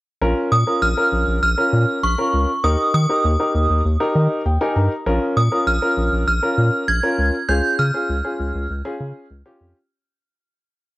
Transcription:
0.21 0.34 A#1 loud
0.21 0.52 C#4 medium
0.21 0.52 F4 medium
0.21 0.52 A#4 loud
0.52 0.64 A#2 medium
0.52 0.83 D#6 medium
0.67 0.87 C#4 medium
0.67 0.87 F4 medium
0.67 0.87 A#4 medium
0.82 0.94 A#1 loud
0.82 1.39 F6 loud
0.97 1.37 C#4 medium
0.97 1.37 F4 medium
0.97 1.37 A#4 medium
1.12 1.25 A#1 medium
1.27 1.40 A#1 medium
1.43 1.55 A#1 loud
1.43 2.05 F6 loud
1.58 1.98 C#4 medium
1.58 1.98 F4 medium
1.58 1.98 A#4 medium
1.73 1.85 A#2 loud
2.03 2.16 A#1 loud
2.03 2.66 C#6 medium
2.18 2.49 C#4 medium
2.18 2.49 F4 medium
2.18 2.49 A#4 medium
2.34 2.46 C#2 medium
2.64 2.76 D#2 loud
2.64 2.94 D#4 medium
2.64 2.94 G4 medium
2.64 2.94 A#4 medium
2.64 2.93 D#6 medium
2.94 3.06 D#3 loud
2.94 3.81 D#6 medium
3.09 3.29 D#4 medium
3.09 3.29 G4 medium
3.09 3.29 A#4 medium
3.24 3.37 D#2 loud
3.40 3.80 D#4 medium
3.40 3.80 G4 medium
3.40 3.80 A#4 medium
3.55 3.67 D#2 medium
3.70 3.82 D#2 loud
3.85 3.97 D#2 medium
4.00 4.40 D#4 medium
4.00 4.40 G4 medium
4.00 4.40 A#4 medium
4.15 4.28 D#3 loud
4.15 4.44 D#5 medium
4.46 4.58 D#2 loud
4.46 4.60 G5 medium
4.61 4.91 D#4 medium
4.61 4.91 G4 medium
4.61 4.91 A#4 medium
4.61 4.75 G#5 medium
4.76 4.88 G2 medium
4.76 5.04 A#5 medium
5.06 5.19 A#1 loud
5.06 5.36 C#4 medium
5.06 5.36 F4 medium
5.06 5.36 A#4 loud
5.37 5.49 A#2 loud
5.37 5.68 D#6 medium
5.52 5.72 C#4 medium
5.52 5.72 F4 medium
5.52 5.72 A#4 medium
5.67 5.79 A#1 loud
5.67 6.26 F6 medium
5.82 6.22 C#4 medium
5.82 6.22 F4 medium
5.82 6.22 A#4 medium
5.97 6.10 A#1 medium
6.12 6.25 A#1 loud
6.27 6.40 A#1 loud
6.27 6.90 F6 medium
6.43 6.83 C#4 medium
6.43 6.83 F4 medium
6.43 6.83 A#4 medium
6.58 6.70 A#2 medium
6.88 7.00 A#1 loud
6.88 7.51 G#6 loud
7.03 7.33 C#4 medium
7.03 7.33 F4 medium
7.03 7.33 A#4 medium
7.18 7.31 C#2 medium
7.49 7.61 C#2 loud
7.49 7.79 C#4 medium
7.49 7.79 F4 medium
7.49 7.79 G#4 medium
7.49 7.77 G6 loud
7.79 7.91 C#3 loud
7.79 8.66 F6 medium
7.94 8.14 C#4 medium
7.94 8.14 F4 medium
7.94 8.14 G#4 medium
8.09 8.22 C#2 loud
8.24 8.65 C#4 medium
8.24 8.65 F4 medium
8.24 8.65 G#4 medium
8.40 8.52 C#2 loud
8.55 8.67 C#2 loud
8.70 8.82 C#2 loud
8.85 9.25 C#4 medium
8.85 9.25 F4 medium
8.85 9.25 G#4 medium
9.00 9.13 C#3 loud
9.31 9.43 C#2 loud
9.46 9.76 C#4 medium
9.46 9.76 F4 medium
9.46 9.76 G4 medium
9.61 9.73 F2 medium

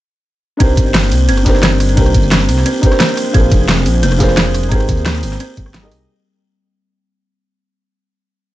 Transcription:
0.57 0.76 C2 loud
0.57 0.76 C4 medium
0.57 1.41 D4 medium
0.57 1.43 D#4 medium
0.57 1.44 G4 medium
0.57 kick loud
0.57 closed hi-hat loud
0.57 ride medium
0.62 1.45 A#4 medium
0.62 1.45 C5 loud
0.77 1.13 G1 medium
0.77 kick loud
0.77 closed hi-hat medium
0.77 ride medium
0.77 tambourine medium
0.94 1.10 A#3 loud
0.94 snare loud
0.94 closed hi-hat medium
0.94 ride medium
1.03 snare medium
1.03 tambourine soft
1.11 1.30 C2 medium
1.11 open hi-hat medium
1.11 ride medium
1.11 tambourine medium
1.29 1.96 G1 loud
1.29 1.38 C4 medium
1.29 closed hi-hat medium
1.29 ride medium
1.37 cross-stick soft
1.37 ride soft
1.43 1.93 D4 medium
1.43 1.94 D#4 medium
1.43 1.95 G4 medium
1.43 kick medium
1.43 snare medium
1.43 closed hi-hat medium
1.43 ride medium
1.43 tambourine medium
1.47 1.96 A#4 medium
1.47 1.97 C5 loud
1.55 snare soft
1.63 1.79 C4 medium
1.63 snare loud
1.63 closed hi-hat medium
1.63 ride medium
1.80 cross-stick soft
1.80 open hi-hat medium
1.80 ride medium
1.80 tambourine medium
1.89 ride soft
1.94 2.13 C2 loud
1.94 2.13 A#3 loud
1.94 2.78 D4 medium
1.94 2.80 D#4 medium
1.94 2.81 G4 medium
1.94 kick loud
1.94 closed hi-hat medium
1.94 ride medium
1.99 2.82 A#4 medium
1.99 2.83 C5 medium
2.06 cross-stick soft
2.06 ride soft
2.14 2.50 G1 medium
2.14 kick loud
2.14 closed hi-hat medium
2.14 ride medium
2.14 tambourine medium
2.23 tambourine soft
2.31 2.41 C4 medium
2.31 snare loud
2.31 closed hi-hat medium
2.31 ride medium
2.40 snare soft
2.40 tambourine soft
2.48 2.64 C2 medium
2.48 open hi-hat medium
2.48 ride medium
2.48 tambourine medium
2.58 snare soft
2.66 2.82 C4 medium
2.66 closed hi-hat medium
2.66 ride medium
2.80 3.30 D4 medium
2.80 3.32 D#4 medium
2.80 3.32 G4 medium
2.80 kick loud
2.80 closed hi-hat medium
2.80 ride medium
2.80 tambourine medium
2.85 3.33 A#4 medium
2.85 3.34 C5 loud
2.92 cross-stick medium
2.92 snare soft
3.00 3.16 A#3 loud
3.00 snare loud
3.00 closed hi-hat medium
3.00 ride medium
3.09 ride soft
3.17 cross-stick soft
3.17 open hi-hat medium
3.17 ride medium
3.17 tambourine medium
3.31 3.50 A#1 loud
3.31 3.44 C4 medium
3.31 4.16 D4 medium
3.31 4.17 F4 medium
3.31 4.18 G#4 medium
3.31 kick loud
3.31 closed hi-hat medium
3.31 ride medium
3.36 4.19 A#4 medium
3.36 4.20 C5 medium
3.51 3.87 F1 medium
3.51 kick loud
3.51 closed hi-hat medium
3.51 ride medium
3.51 tambourine medium
3.68 3.85 C4 medium
3.68 snare loud
3.68 closed hi-hat medium
3.68 ride medium
3.77 snare medium
3.77 tambourine soft
3.86 4.04 A#1 medium
3.86 open hi-hat medium
3.86 ride medium
3.86 tambourine medium
4.03 4.70 F1 loud
4.03 4.18 A#3 loud
4.03 closed hi-hat medium
4.03 ride medium
4.12 cross-stick soft
4.12 ride soft
4.17 4.68 D4 medium
4.17 4.69 F4 medium
4.17 4.70 G#4 medium
4.17 kick medium
4.17 snare medium
4.17 closed hi-hat medium
4.17 ride medium
4.17 tambourine medium
4.22 4.70 A#4 medium
4.22 4.71 C5 loud
4.29 snare soft
4.37 4.47 C4 medium
4.37 snare loud
4.37 closed hi-hat medium
4.37 ride medium
4.54 cross-stick soft
4.54 open hi-hat medium
4.54 ride medium
4.54 tambourine medium
4.63 ride soft
4.68 4.87 G#1 loud
4.68 4.88 C4 medium
4.68 5.54 D#4 medium
4.68 5.55 G4 medium
4.68 5.55 G#4 medium
4.68 kick loud
4.68 closed hi-hat medium
4.68 ride medium
4.73 5.56 A#4 medium
4.73 5.57 C5 loud
4.80 cross-stick soft
4.80 ride soft
4.89 5.24 D#2 loud
4.89 kick loud
4.89 closed hi-hat medium
4.89 ride medium
4.89 tambourine medium
4.97 tambourine soft
5.06 5.21 A#3 loud
5.06 snare loud
5.06 closed hi-hat medium
5.06 ride medium
5.15 snare soft
5.15 tambourine soft
5.23 5.38 G#1 medium
5.23 open hi-hat medium
5.23 ride medium
5.23 tambourine medium
5.32 snare soft
5.40 5.49 C4 medium
5.40 closed hi-hat medium
5.40 ride medium
5.57 5.93 G#1 loud
5.57 kick loud
5.57 closed hi-hat medium
5.57 tambourine medium
5.66 cross-stick medium
5.74 5.90 G3 medium
5.74 snare loud
5.74 closed hi-hat medium
5.74 ride medium
5.82 6.06 D#4 loud
5.82 6.06 G4 medium
5.82 6.07 G#4 medium
5.82 6.07 A#4 medium
5.82 6.07 D#5 loud
5.82 ride soft
5.91 6.07 C2 medium
5.91 cross-stick soft
5.91 open hi-hat medium
5.91 ride medium
5.91 tambourine medium

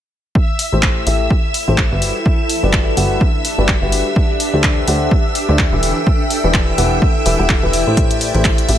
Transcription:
0.35 2.89 E4 medium
0.35 8.78 E5 medium
0.35 8.78 E6 medium
0.35 kick loud
0.59 open hi-hat loud
0.72 1.05 A1 medium
0.72 1.04 A3 medium
0.72 1.04 E4 medium
0.72 1.04 G4 medium
0.72 1.04 A4 medium
0.72 1.04 C5 medium
0.78 2.66 A4 medium
0.83 kick loud
0.83 clap loud
1.07 1.28 A1 medium
1.07 1.30 A3 medium
1.07 1.30 E4 medium
1.07 1.30 G4 medium
1.07 1.30 A4 medium
1.07 1.30 E5 loud
1.07 open hi-hat medium
1.30 kick loud
1.54 open hi-hat loud
1.68 1.89 A1 loud
1.68 1.81 A3 medium
1.68 1.81 E4 medium
1.68 1.81 G4 medium
1.68 1.81 A4 medium
1.68 1.81 C5 loud
1.78 kick loud
1.78 clap loud
1.92 2.12 G1 medium
1.92 2.15 G3 medium
1.92 2.15 F#4 medium
1.92 2.15 G4 medium
1.92 2.15 B4 medium
1.92 2.15 E5 medium
2.02 6.70 D4 medium
2.02 open hi-hat loud
2.26 kick loud
2.48 4.16 B4 medium
2.48 open hi-hat loud
2.63 2.95 G1 medium
2.63 2.95 G3 medium
2.63 2.95 F#4 medium
2.63 2.95 G4 medium
2.63 2.95 B4 medium
2.63 2.95 D5 medium
2.71 4.83 G4 medium
2.71 kick loud
2.71 clap loud
2.97 3.19 G1 loud
2.97 3.21 G3 medium
2.97 3.21 F#4 medium
2.97 3.21 G4 medium
2.97 3.21 B4 medium
2.97 3.21 F#5 medium
2.97 open hi-hat loud
3.21 kick loud
3.45 open hi-hat loud
3.58 3.79 G1 medium
3.58 3.72 G3 medium
3.58 3.72 F#4 medium
3.58 3.72 G4 medium
3.58 3.72 B4 medium
3.58 3.72 D5 loud
3.68 kick loud
3.68 clap loud
3.82 4.03 G1 medium
3.82 4.05 G3 medium
3.82 4.05 F#4 medium
3.82 4.05 G4 medium
3.82 4.05 B4 medium
3.82 4.05 E5 medium
3.92 open hi-hat loud
4.16 kick loud
4.35 6.70 A4 medium
4.40 8.78 G5 medium
4.40 open hi-hat loud
4.53 4.86 D2 medium
4.53 4.85 D4 medium
4.53 4.85 G4 medium
4.53 4.85 A4 medium
4.53 4.85 C5 medium
4.53 4.85 D5 medium
4.64 kick loud
4.64 clap loud
4.88 5.09 D2 loud
4.88 5.11 D4 medium
4.88 5.11 G4 medium
4.88 5.11 A4 medium
4.88 5.11 C5 medium
4.88 5.11 F#5 loud
4.88 open hi-hat loud
5.11 kick loud
5.35 open hi-hat loud
5.49 5.70 D2 medium
5.49 5.62 D4 medium
5.49 5.62 G4 medium
5.49 5.62 A4 medium
5.49 5.62 C5 medium
5.49 5.62 D5 loud
5.59 kick loud
5.59 clap loud
5.73 5.93 E1 medium
5.73 5.96 E3 medium
5.73 5.96 E4 medium
5.73 5.96 G4 medium
5.73 5.96 B4 medium
5.73 5.96 E5 medium
5.83 8.78 E4 medium
5.83 open hi-hat loud
6.07 kick loud
6.30 open hi-hat loud
6.44 6.76 E1 medium
6.44 6.76 E3 medium
6.44 6.76 E4 medium
6.44 6.76 G4 medium
6.44 6.76 B4 medium
6.44 6.76 D5 medium
6.54 kick loud
6.54 clap loud
6.78 6.99 E1 loud
6.78 7.02 E3 medium
6.78 7.02 E4 medium
6.78 7.02 G4 medium
6.78 7.02 B4 medium
6.78 8.64 D5 medium
6.78 7.02 F#5 loud
6.78 open hi-hat loud
7.02 kick loud
7.26 7.37 E1 medium
7.26 7.37 E3 medium
7.26 7.37 E4 medium
7.26 7.37 G4 medium
7.26 7.37 B4 medium
7.26 7.37 E5 loud
7.26 open hi-hat loud
7.39 7.60 E1 medium
7.39 7.53 E3 medium
7.39 7.53 E4 medium
7.39 7.53 G4 medium
7.39 7.53 B4 medium
7.39 7.53 F#5 medium
7.49 kick loud
7.49 clap loud
7.63 7.84 E1 medium
7.63 7.83 E3 medium
7.63 7.83 E4 medium
7.63 7.83 G4 medium
7.63 7.83 B4 medium
7.63 7.83 E5 medium
7.73 open hi-hat loud
7.87 8.32 A1 medium
7.87 8.31 A3 medium
7.87 8.31 E4 medium
7.87 8.31 G4 medium
7.87 8.31 A4 medium
7.87 8.31 C5 medium
7.97 kick loud
7.97 closed hi-hat medium
8.11 closed hi-hat soft
8.16 8.78 A4 medium
8.21 open hi-hat loud
8.34 8.67 A1 medium
8.34 8.66 A3 medium
8.34 8.66 E4 medium
8.34 8.66 G4 medium
8.34 8.66 A4 medium
8.34 8.66 C5 medium
8.34 closed hi-hat soft
8.45 kick loud
8.45 clap loud
8.45 closed hi-hat medium
8.58 closed hi-hat soft
8.69 8.78 A1 medium
8.69 8.78 A3 medium
8.69 8.78 E4 medium
8.69 8.78 G4 medium
8.69 8.78 A4 medium
8.69 8.78 E5 loud
8.69 open hi-hat loud

